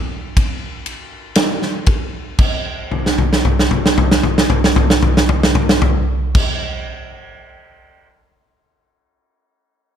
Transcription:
0.37 kick, ride
0.86 ride
1.35 snare, ride
1.62 snare
1.86 kick, ride
2.38 kick, crash
2.91 floor tom
3.06 snare
3.18 floor tom
3.33 snare
3.45 floor tom
3.59 snare
3.71 floor tom
3.86 snare
3.98 floor tom
4.11 snare
4.23 floor tom
4.38 snare
4.50 floor tom
4.64 snare
4.76 floor tom
4.90 snare
5.03 floor tom
5.17 snare
5.29 floor tom
5.43 snare
5.55 floor tom
5.69 snare
5.82 floor tom
6.35 kick, crash

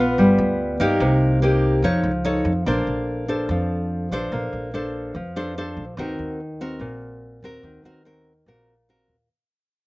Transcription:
Already playing: A#1 B3
0.00 F4
0.18 G1 G3
0.38 D2
0.80 G2 A#3 D#4 G4
1.00 C2 C3
1.42 A#3 D#4 G4
1.82 F2 F3 D#4 A4 C#5
2.03 C#2
2.25 D#4 A4 C#5
2.45 F2
2.66 A#1 A#3 D4 A4 C5
2.87 A#1
3.28 D4 A4 C5
3.49 F2 F3
4.11 A#1 D4 A4 C5
4.32 A#1 A#3
4.53 A#1
4.74 D4 A4 C5
5.15 F2 F3
5.36 D4 A4 C5
5.58 D4 A4 C5
5.77 A#1
5.97 D#2 D#3 C4 F#4 A#4
6.19 D#2
6.61 C4 F#4 A#4
6.80 A#1 A#2
7.43 D#2 C4 F#4 A#4
7.63 D#2 D#3
7.84 D#2 C4 F#4 A#4
8.05 C4 F#4 A#4
8.46 A#1 A#2 C4 F#4 A#4
8.89 C4 F#4 A#4
9.08 D#2

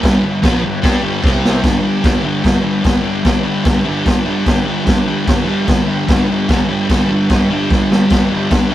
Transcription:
0.00 G1 G2 D4 G4 B4, kick, crash
0.05 D3 G3, snare
0.21 G1 G2 D3 D4 G4 B4
0.41 A#1 A#2 F3 A#3 D4 G4 B4, kick, snare, crash
0.62 G1 G2 D3 D4 G4 B4
0.81 G2 G3 D4 G4 B4, kick, crash
0.85 snare
1.02 G1 G2 D3 G3 D4 G4 B4
1.22 C2 C3 G3 C4 G4 C5, kick, snare
1.42 C4 G4 C5, snare
1.61 G1 G2 D3 D4 G4 B4, kick, crash
1.65 G3, snare
1.82 G1 D3 G3 D4 G4 D5
2.02 G1 G2 D3 G3 D4 G4 D5, kick, snare, crash
2.22 G1 G2 D3 G3 D4 G4 A4
2.42 G1 G2 D3 G3 D4 G4 B4, kick, crash
2.46 snare
2.62 G1 G2 D3 G3 D4 G4 B4
2.82 G1 G2 D3 G3 D4 G4 B4, kick, crash
2.86 snare
3.01 G1 G3 D4 G4 D5
3.06 D3
3.23 G1 G2 D3 D4 G4 D5, kick, snare, crash
3.27 G3
3.44 G1 D3 G3 D4 G4 B4
3.62 G1 G2 D3 D4 G4 B4, kick, crash
3.66 G3, snare
3.82 G1 D3 G3 D4 G4 B4
3.88 G2
4.03 G1 G2 D3 D4 G4 A4, kick, crash
4.08 G3, snare
4.24 G1 D3 G3 D4 G4 A4
4.28 G2
4.44 G1 G2 D3 G3 D4 G4 B4, kick, snare, crash
4.65 G1 D3 G3 D4 G4 B4
4.84 G1 G2 D3 G3 D4 G4 B4, kick, crash
4.89 snare
5.04 G1 G3 D4 G4 A4
5.09 D3
5.24 G1 G2 D3 D4 G4 B4, kick, crash
5.29 G3, snare
5.43 D3 G3 D4 G4 B4
5.48 G1 G2
5.64 G2 D3 D4 G4 A4, kick, crash
5.68 G1 G3, snare
5.85 G1 G2 D3 G3 D4 G4 B4
6.05 G1 G2 D3 G3 D4 G4 B4, kick, crash
6.10 snare
6.26 G1 G3 D4 G4 A4
6.30 D3
6.46 G1 G2 D3 D4 G4 B4, kick, snare, crash
6.52 G3
6.68 G1 G3 D4 G4 B4
6.72 D3
6.89 G1 G2 D3 G3 D4 G4 A4, kick, snare, crash
7.08 G1 D3 G3 D4 G4 A4
7.12 G2
7.29 G1 G2 D3 G3 D4 G4 A4, kick, snare, crash
7.49 G1 D3 G3 D4 G4 D5
7.53 G2
7.67 G1 G2 D4 G4 A4, kick
7.72 D3 G3, snare
7.88 G1 G3 D4 G4 B4, snare
7.93 D3
8.09 G1 G2 D3 D4 G4 B4, kick, snare, crash
8.13 G3
8.29 G1 G3 D4 G4 B4
8.34 D3
8.50 G1 G2 D3 G3 D4 G4 B4, kick, snare, crash
8.70 G1 D3 G3

